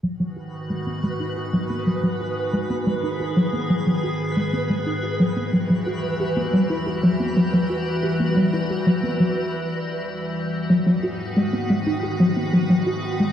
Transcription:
<<
  \new Staff \with { instrumentName = "Synth texture" } { \time 4/4 \key gis \minor \tempo 4 = 90 b'1~ | b'1~ | b'1~ | b'2 r2 |
r1 | }
  \new Staff \with { instrumentName = "Acid bass" } { \time 4/4 \key gis \minor fis16 fis16 fis'16 dis'16 gis16 b16 gis16 dis'16 fis'16 fis16 b16 fis16 fis16 fis'16 dis'16 gis16 | b16 gis16 dis'16 fis'16 fis16 b16 fis16 fis16 fis'16 dis'16 gis16 b16 gis16 dis'16 fis'16 fis16 | b16 fis16 fis16 fis'16 e'16 g'16 b16 g16 e'16 fis'16 fis16 b16 fis16 fis16 fis'16 e'16 | g'16 b16 g16 e'16 fis'16 fis16 b16 fis16 r2 |
fis16 fis16 fis'16 dis'16 gis16 b16 gis16 dis'16 fis'16 fis16 b16 fis16 fis16 fis'16 dis'16 gis16 | }
  \new Staff \with { instrumentName = "Ambient pad" } { \clef bass \time 4/4 \key gis \minor << { fis'1 | gis'1 | fis'1~ | fis'1 |
fis'1 | } \\ { <gis, dis b>1~ | <gis, dis b>1 | <e, e g>1~ | <e, e g>1 |
<gis, dis b>1 | } >> }
>>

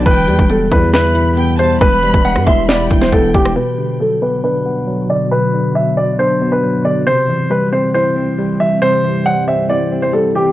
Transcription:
<<
  \new Staff \with { instrumentName = "Violin section" } { \time 4/4 \key b \phrygian \tempo 4 = 137 g''4 r4 b''4 g''8 a''8 | b''4. c'''8 b''8 g''4. | r1 | r1 |
r1 | r1 | }
  \new Staff \with { instrumentName = "Grand piano" } { \time 4/4 \key b \phrygian b'4 a'8 b'8 b'4. c''8 | b'4 fis''8 e''8 d''8. c''16 a'8 g'8 | b'4 a'8 b'8 b'4. d''8 | b'4 e''8 d''8 c''8. b'8. d''8 |
c''4 b'8 c''8 c''4. e''8 | c''4 fis''8 e''8 d''8. c''16 a'8 g'8 | }
  \new Staff \with { instrumentName = "Tine electric piano" } { \clef bass \time 4/4 \key b \phrygian e8 g8 b8 e'8 e''8 e'8 b8 g8 | e8 g8 b8 e'8 e''8 e'8 b8 g8 | b,8 d8 fis8 b8 d'8 b8 fis8 d8 | b,8 d8 fis4 d'8 b8 fis8 d8 |
c8 e8 g8 c'8 e'8 c'8 g8 e8 | c8 e8 g8 c'8 e'8 c'8 g8 e8 | }
  \new Staff \with { instrumentName = "Ambient pad" } { \clef bass \time 4/4 \key b \phrygian <b, e g g'>1~ | <b, e g g'>1 | <b, d fis fis'>1~ | <b, d fis fis'>1 |
<e g c' g'>1~ | <e g c' g'>1 | }
  \new Staff \with { instrumentName = "808-style bass" } { \clef bass \time 4/4 \key b \phrygian e,,8 e,16 e,,8. e,2~ e,8 | e,,8. e,,8 g,16 e,,4 e,,8 e,,8 e,,8 | r1 | r1 |
r1 | r1 | }
  \new DrumStaff \with { instrumentName = "Drums" } \drummode { \time 4/4 <hh bd>8 hh16 bd16 hh8 <hh bd>8 <hh sn>8 hh8 hh8 hh8 | <hh bd>8 hh16 <hh bd>16 hh16 ss16 <hh bd>8 <hh sn>8 <hh bd>16 sn16 <hh bd>8 <hh hho bd>16 <hh ss>16 | r4 r4 r4 r4 | r4 r4 r4 r4 |
r4 r4 r4 r4 | r4 r4 r4 r4 | }
>>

